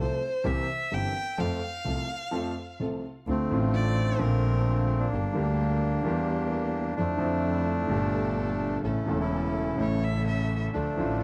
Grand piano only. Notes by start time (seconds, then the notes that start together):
Already playing: F3
0.00 C2 C3 A3 C4 A4
0.44 C2 C3 E3 A#3 C4 G4
0.91 G1 G2 E3 A#3 C4 G4
1.38 F2 F3 A3 C4 A4
1.85 C2 C3 F3 A3 C4 A4
2.31 F2 F3 A3 C4 A4
2.80 C2 C3 F3 A3 C4 A4
3.28 D2 D3 A3 C4 F4
3.49 A1 A2 D3 A3 C4
3.53 F4
4.17 A#1 A#2 D3 F3 D4 F4
5.12 G1 G2 D3 G3 A#3 G4
5.33 D2 D3 G3 A#3 G4
6.03 E2 E3 G3 A#3
6.07 G4
6.97 F2 D3 F3 A3 E4
7.17 F2 D3 F3 A3 E4
7.87 G1 G2 A#2 D3 A3 G4
8.83 A1 A2 C#3 E3 A3 E4
9.06 E1 E2 C#3 E3 A3
9.10 E4
9.76 A1 A2 C#3 E3 A3
9.80 E4
10.74 D2 D3 F3 A3 F4
10.96 A1 A2 D3 F3 A3 F4